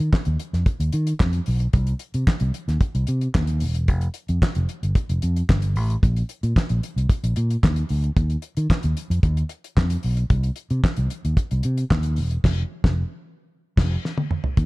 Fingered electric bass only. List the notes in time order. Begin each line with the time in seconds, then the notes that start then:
0.27 D#2
0.53 F2
0.80 D#2
0.94 D#3
1.20 F2
1.48 B1
1.74 C2
2.14 C3
2.41 C2
2.68 D#2
2.95 C2
3.08 C3
3.35 D#2
3.62 E1
3.89 F1
4.29 F2
4.56 F1
4.83 G1
5.10 F1
5.23 F2
5.50 G1
5.76 A1
6.03 A#1
6.43 A#2
6.70 A#1
6.96 C2
7.24 A#1
7.37 A#2
7.64 D#2
7.90 D2
8.17 D#2
8.57 D#3
8.84 D#2
9.10 F2
9.23 D#2
9.77 F2
10.04 B1
10.30 C2
10.71 C3
10.98 C2
11.25 D#2
11.52 C2
11.65 C3
11.91 D#2
12.18 E1
12.44 F1
12.84 F1
13.78 F1
14.58 D#2